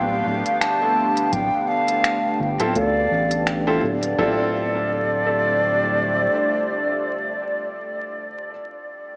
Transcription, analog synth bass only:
Already playing: D1
0.26 D1
1.33 D1
2.40 G1
2.60 D1
2.76 D2
3.11 A1
3.83 D1
4.18 D1

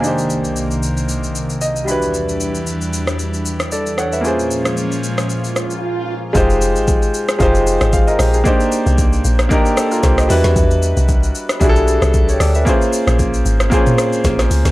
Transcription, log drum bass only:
6.35 F1
6.76 G#1
7.40 F1
7.81 G#1
8.19 A#1
8.87 C2
9.25 A#1
10.03 C2
10.30 E2
10.44 E2
10.56 E2
10.97 C2
11.61 B1
12.02 C2
12.40 D2
13.07 A#1
13.45 G#1
14.25 A#1
14.51 C#2
14.65 C#2

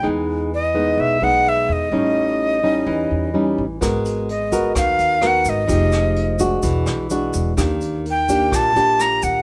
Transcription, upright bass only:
0.04 E2
0.98 B1
1.21 B1
1.69 E2
1.91 A1
2.86 E2
3.11 E2
3.58 A1
3.82 G#1
4.76 D#2
4.99 D#2
5.46 G#1
5.69 F1
6.63 E1
6.86 B1
7.33 E1
7.57 D#2
8.52 A#1
8.76 A#1
9.23 D#2

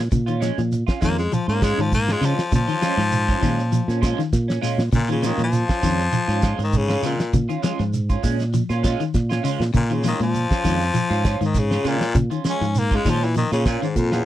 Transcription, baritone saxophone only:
1.04 A#3
1.18 G#3
1.34 F3
1.49 A#3
1.63 G#3
1.81 F3
1.95 A#3
2.12 G#3
2.26 F3
2.55 F3
4.95 A#2
5.11 C#3
5.26 D#3
5.44 F3
6.64 D#3
6.77 C#3
7.06 A#2
9.77 A#2
9.93 C#3
10.08 D#3
10.23 F3
11.45 D#3
11.59 C#3
11.88 A#2
12.50 C#4
12.79 A#3
12.96 G#3
13.10 F3
13.24 E3
13.37 D#3
13.53 C#3
13.66 A#2
13.83 G#2
13.97 F2
14.13 E2

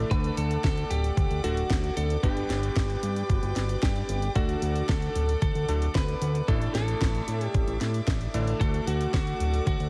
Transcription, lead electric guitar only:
0.11 B4
0.37 A4
0.64 A4
0.90 G4
1.44 F#4
1.97 A4
2.23 G4
3.29 F#4
3.83 G4
4.35 F#4
4.89 A4
5.42 A4
5.95 B4
6.48 A4
6.75 A4
7.46 G4
8.61 A4
8.87 F#4
9.14 F#4
9.67 F#4

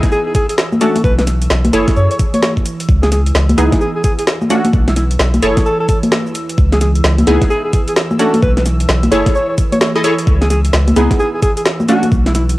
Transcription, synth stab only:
Already playing: B3 D#4 E4 G#4
0.81 A3 C#4 D4 F#4
1.73 E4 G#4 A4 C#5
3.58 B3 D#4 E4 G#4
4.50 A3 C#4 D4 F#4
5.42 E4 G#4 A4 C#5
7.27 B3 D#4 E4 G#4
8.19 A3 C#4 D4 F#4
9.12 E4 G#4 A4 C#5
9.96 E4 G#4 A4 D#5
10.04 E4 G#4 A4 C#5
10.96 B3 D#4 E4 G#4
11.89 A3 C#4 D4 F#4

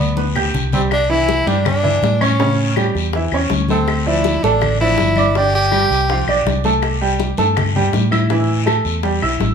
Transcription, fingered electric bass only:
0.00 D2
0.54 C2
1.46 G2
2.02 A2
2.95 E2
3.32 E2
3.50 D2
4.43 A1
4.98 G1
5.90 C2
6.27 B1
6.45 C2
7.38 G2
7.93 A2
8.85 E2
9.22 B1
9.41 A1

